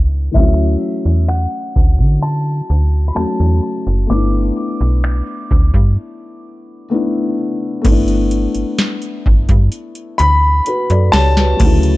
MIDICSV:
0, 0, Header, 1, 5, 480
1, 0, Start_track
1, 0, Tempo, 937500
1, 178, Time_signature, 4, 2, 24, 8
1, 6129, End_track
2, 0, Start_track
2, 0, Title_t, "Grand piano"
2, 0, Program_c, 0, 0
2, 176, Note_on_c, 0, 76, 85
2, 657, Note_on_c, 0, 78, 86
2, 671, Note_off_c, 0, 76, 0
2, 1139, Note_on_c, 0, 81, 89
2, 1152, Note_off_c, 0, 78, 0
2, 1562, Note_off_c, 0, 81, 0
2, 1577, Note_on_c, 0, 83, 72
2, 1615, Note_off_c, 0, 83, 0
2, 1618, Note_on_c, 0, 81, 96
2, 2099, Note_on_c, 0, 86, 103
2, 2112, Note_off_c, 0, 81, 0
2, 3518, Note_off_c, 0, 86, 0
2, 5213, Note_on_c, 0, 83, 110
2, 5675, Note_off_c, 0, 83, 0
2, 5694, Note_on_c, 0, 81, 121
2, 6129, Note_off_c, 0, 81, 0
2, 6129, End_track
3, 0, Start_track
3, 0, Title_t, "Felt piano"
3, 0, Program_c, 1, 0
3, 0, Control_c, 1, 64, 127
3, 0, Note_on_c, 1, 57, 64
3, 0, Note_on_c, 1, 59, 59
3, 0, Note_on_c, 1, 62, 60
3, 0, Note_on_c, 1, 64, 71
3, 148, Note_off_c, 1, 57, 0
3, 155, Note_off_c, 1, 59, 0
3, 161, Note_on_c, 1, 52, 53
3, 162, Note_off_c, 1, 62, 0
3, 169, Note_off_c, 1, 64, 0
3, 175, Note_on_c, 1, 57, 60
3, 184, Control_c, 1, 64, 0
3, 190, Note_on_c, 1, 61, 61
3, 194, Note_on_c, 1, 54, 66
3, 203, Note_off_c, 1, 52, 0
3, 204, Note_on_c, 1, 64, 71
3, 259, Control_c, 1, 64, 127
3, 1596, Note_off_c, 1, 57, 0
3, 1603, Note_off_c, 1, 61, 0
3, 1604, Note_off_c, 1, 54, 0
3, 1610, Note_off_c, 1, 64, 0
3, 1612, Note_on_c, 1, 54, 51
3, 1619, Note_on_c, 1, 57, 46
3, 1626, Note_on_c, 1, 61, 44
3, 1633, Note_on_c, 1, 66, 54
3, 2073, Note_off_c, 1, 57, 0
3, 2080, Note_on_c, 1, 57, 66
3, 2095, Note_off_c, 1, 54, 0
3, 2095, Note_on_c, 1, 59, 61
3, 2102, Note_off_c, 1, 61, 0
3, 2105, Note_off_c, 1, 66, 0
3, 2105, Control_c, 1, 64, 0
3, 2109, Note_on_c, 1, 62, 60
3, 2123, Note_on_c, 1, 64, 73
3, 2181, Control_c, 1, 64, 127
3, 3509, Note_off_c, 1, 57, 0
3, 3516, Note_off_c, 1, 59, 0
3, 3523, Note_off_c, 1, 62, 0
3, 3530, Note_off_c, 1, 64, 0
3, 3531, Note_on_c, 1, 57, 59
3, 3538, Note_on_c, 1, 59, 55
3, 3545, Note_on_c, 1, 62, 58
3, 3552, Note_on_c, 1, 64, 67
3, 3994, Note_off_c, 1, 57, 0
3, 4002, Note_on_c, 1, 57, 79
3, 4008, Note_off_c, 1, 59, 0
3, 4015, Note_on_c, 1, 59, 70
3, 4022, Note_off_c, 1, 62, 0
3, 4025, Note_off_c, 1, 64, 0
3, 4025, Control_c, 1, 64, 0
3, 4030, Note_on_c, 1, 62, 72
3, 4044, Note_on_c, 1, 64, 89
3, 4129, Control_c, 1, 64, 127
3, 5463, Note_on_c, 1, 71, 65
3, 5467, Note_on_c, 1, 66, 55
3, 5574, Note_off_c, 1, 71, 0
3, 5577, Note_off_c, 1, 66, 0
3, 5584, Note_on_c, 1, 74, 66
3, 5586, Note_on_c, 1, 69, 57
3, 5695, Note_off_c, 1, 74, 0
3, 5696, Note_off_c, 1, 69, 0
3, 5703, Note_on_c, 1, 73, 67
3, 5707, Note_on_c, 1, 67, 60
3, 5815, Note_off_c, 1, 73, 0
3, 5817, Note_off_c, 1, 67, 0
3, 5824, Note_on_c, 1, 71, 66
3, 5827, Note_on_c, 1, 66, 55
3, 5909, Note_off_c, 1, 57, 0
3, 5916, Note_off_c, 1, 59, 0
3, 5921, Note_on_c, 1, 54, 69
3, 5923, Note_off_c, 1, 62, 0
3, 5931, Note_off_c, 1, 64, 0
3, 5935, Note_on_c, 1, 57, 63
3, 5943, Control_c, 1, 64, 0
3, 5951, Note_on_c, 1, 49, 62
3, 5965, Note_on_c, 1, 64, 78
3, 6019, Control_c, 1, 64, 127
3, 6049, Note_off_c, 1, 71, 0
3, 6051, Note_off_c, 1, 66, 0
3, 6129, Note_off_c, 1, 49, 0
3, 6129, Note_off_c, 1, 54, 0
3, 6129, Note_off_c, 1, 57, 0
3, 6129, Note_off_c, 1, 64, 0
3, 6129, End_track
4, 0, Start_track
4, 0, Title_t, "FM bass"
4, 0, Program_c, 2, 39
4, 0, Note_on_c, 2, 37, 93
4, 152, Note_off_c, 2, 37, 0
4, 180, Note_on_c, 2, 38, 115
4, 393, Note_off_c, 2, 38, 0
4, 540, Note_on_c, 2, 40, 81
4, 753, Note_off_c, 2, 40, 0
4, 902, Note_on_c, 2, 38, 90
4, 1019, Note_on_c, 2, 50, 102
4, 1027, Note_off_c, 2, 38, 0
4, 1340, Note_off_c, 2, 50, 0
4, 1382, Note_on_c, 2, 38, 93
4, 1594, Note_off_c, 2, 38, 0
4, 1623, Note_on_c, 2, 40, 46
4, 1669, Note_off_c, 2, 40, 0
4, 1741, Note_on_c, 2, 40, 91
4, 1846, Note_off_c, 2, 40, 0
4, 1980, Note_on_c, 2, 30, 89
4, 2086, Note_off_c, 2, 30, 0
4, 2100, Note_on_c, 2, 31, 105
4, 2313, Note_off_c, 2, 31, 0
4, 2461, Note_on_c, 2, 35, 87
4, 2674, Note_off_c, 2, 35, 0
4, 2822, Note_on_c, 2, 38, 86
4, 2927, Note_off_c, 2, 38, 0
4, 2939, Note_on_c, 2, 43, 95
4, 3059, Note_off_c, 2, 43, 0
4, 4019, Note_on_c, 2, 31, 106
4, 4340, Note_off_c, 2, 31, 0
4, 4380, Note_on_c, 2, 31, 45
4, 4428, Note_off_c, 2, 31, 0
4, 4743, Note_on_c, 2, 31, 82
4, 4848, Note_off_c, 2, 31, 0
4, 4859, Note_on_c, 2, 43, 98
4, 4966, Note_off_c, 2, 43, 0
4, 5221, Note_on_c, 2, 38, 98
4, 5434, Note_off_c, 2, 38, 0
4, 5582, Note_on_c, 2, 42, 89
4, 5687, Note_off_c, 2, 42, 0
4, 5700, Note_on_c, 2, 37, 101
4, 5913, Note_off_c, 2, 37, 0
4, 5940, Note_on_c, 2, 38, 116
4, 6129, Note_off_c, 2, 38, 0
4, 6129, End_track
5, 0, Start_track
5, 0, Title_t, "Drums"
5, 177, Note_on_c, 9, 42, 66
5, 178, Note_on_c, 9, 36, 109
5, 228, Note_off_c, 9, 42, 0
5, 229, Note_off_c, 9, 36, 0
5, 298, Note_on_c, 9, 42, 59
5, 349, Note_off_c, 9, 42, 0
5, 417, Note_on_c, 9, 42, 73
5, 469, Note_off_c, 9, 42, 0
5, 537, Note_on_c, 9, 42, 49
5, 588, Note_off_c, 9, 42, 0
5, 658, Note_on_c, 9, 42, 76
5, 659, Note_on_c, 9, 26, 104
5, 709, Note_off_c, 9, 42, 0
5, 710, Note_off_c, 9, 26, 0
5, 777, Note_on_c, 9, 42, 48
5, 828, Note_off_c, 9, 42, 0
5, 901, Note_on_c, 9, 36, 97
5, 952, Note_off_c, 9, 36, 0
5, 1018, Note_on_c, 9, 36, 83
5, 1018, Note_on_c, 9, 42, 45
5, 1069, Note_off_c, 9, 42, 0
5, 1070, Note_off_c, 9, 36, 0
5, 1136, Note_on_c, 9, 42, 63
5, 1187, Note_off_c, 9, 42, 0
5, 1257, Note_on_c, 9, 42, 46
5, 1308, Note_off_c, 9, 42, 0
5, 1377, Note_on_c, 9, 42, 68
5, 1429, Note_off_c, 9, 42, 0
5, 1616, Note_on_c, 9, 42, 76
5, 1621, Note_on_c, 9, 26, 102
5, 1667, Note_off_c, 9, 42, 0
5, 1672, Note_off_c, 9, 26, 0
5, 1740, Note_on_c, 9, 42, 51
5, 1791, Note_off_c, 9, 42, 0
5, 1858, Note_on_c, 9, 42, 60
5, 1909, Note_off_c, 9, 42, 0
5, 2098, Note_on_c, 9, 42, 64
5, 2149, Note_off_c, 9, 42, 0
5, 2218, Note_on_c, 9, 42, 59
5, 2270, Note_off_c, 9, 42, 0
5, 2339, Note_on_c, 9, 42, 73
5, 2390, Note_off_c, 9, 42, 0
5, 2456, Note_on_c, 9, 42, 51
5, 2508, Note_off_c, 9, 42, 0
5, 2579, Note_on_c, 9, 42, 75
5, 2580, Note_on_c, 9, 26, 111
5, 2631, Note_off_c, 9, 26, 0
5, 2631, Note_off_c, 9, 42, 0
5, 2697, Note_on_c, 9, 42, 48
5, 2748, Note_off_c, 9, 42, 0
5, 2821, Note_on_c, 9, 36, 97
5, 2872, Note_off_c, 9, 36, 0
5, 2938, Note_on_c, 9, 36, 79
5, 2938, Note_on_c, 9, 42, 45
5, 2989, Note_off_c, 9, 36, 0
5, 2989, Note_off_c, 9, 42, 0
5, 4017, Note_on_c, 9, 42, 68
5, 4017, Note_on_c, 9, 49, 92
5, 4018, Note_on_c, 9, 36, 114
5, 4069, Note_off_c, 9, 36, 0
5, 4069, Note_off_c, 9, 42, 0
5, 4069, Note_off_c, 9, 49, 0
5, 4136, Note_on_c, 9, 42, 57
5, 4187, Note_off_c, 9, 42, 0
5, 4255, Note_on_c, 9, 42, 70
5, 4306, Note_off_c, 9, 42, 0
5, 4375, Note_on_c, 9, 42, 50
5, 4426, Note_off_c, 9, 42, 0
5, 4498, Note_on_c, 9, 38, 109
5, 4498, Note_on_c, 9, 42, 78
5, 4549, Note_off_c, 9, 42, 0
5, 4550, Note_off_c, 9, 38, 0
5, 4617, Note_on_c, 9, 42, 47
5, 4668, Note_off_c, 9, 42, 0
5, 4741, Note_on_c, 9, 36, 97
5, 4792, Note_off_c, 9, 36, 0
5, 4857, Note_on_c, 9, 42, 43
5, 4858, Note_on_c, 9, 36, 86
5, 4908, Note_off_c, 9, 42, 0
5, 4909, Note_off_c, 9, 36, 0
5, 4975, Note_on_c, 9, 42, 67
5, 5027, Note_off_c, 9, 42, 0
5, 5095, Note_on_c, 9, 42, 53
5, 5146, Note_off_c, 9, 42, 0
5, 5218, Note_on_c, 9, 42, 67
5, 5269, Note_off_c, 9, 42, 0
5, 5457, Note_on_c, 9, 42, 75
5, 5509, Note_off_c, 9, 42, 0
5, 5580, Note_on_c, 9, 42, 53
5, 5631, Note_off_c, 9, 42, 0
5, 5698, Note_on_c, 9, 46, 68
5, 5701, Note_on_c, 9, 38, 108
5, 5750, Note_off_c, 9, 46, 0
5, 5752, Note_off_c, 9, 38, 0
5, 5821, Note_on_c, 9, 38, 88
5, 5872, Note_off_c, 9, 38, 0
5, 5937, Note_on_c, 9, 42, 68
5, 5937, Note_on_c, 9, 49, 106
5, 5939, Note_on_c, 9, 36, 112
5, 5989, Note_off_c, 9, 42, 0
5, 5989, Note_off_c, 9, 49, 0
5, 5990, Note_off_c, 9, 36, 0
5, 6058, Note_on_c, 9, 42, 60
5, 6109, Note_off_c, 9, 42, 0
5, 6129, End_track
0, 0, End_of_file